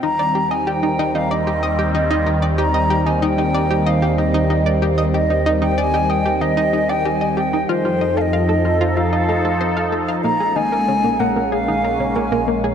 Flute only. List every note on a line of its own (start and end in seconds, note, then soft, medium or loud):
0.03 0.52 A#5 loud
0.51 0.69 G#5 medium
0.67 1.17 G5 loud
1.15 1.33 F5 medium
1.31 1.94 D#5 medium
1.95 2.39 D#5 medium
2.58 3.08 A#5 loud
3.06 3.24 G#5 medium
3.23 3.88 G5 medium
3.86 4.20 F5 medium
4.18 4.82 D#5 medium
5.14 5.58 D#5 loud
5.62 5.80 G5 medium
5.78 6.12 G#5 loud
6.10 6.43 G5 loud
6.42 6.91 D#5 loud
6.90 7.07 G5 loud
7.06 7.39 G#5 loud
7.37 7.71 G5 loud
7.69 8.19 C5 loud
8.18 8.98 D#5 loud
8.18 8.22 F5 medium
8.97 9.92 F5 medium
10.25 10.58 A#5 loud
10.56 11.21 G#5 loud
11.20 11.53 F#5 loud
11.52 12.17 F5 loud
12.16 12.64 G#5 loud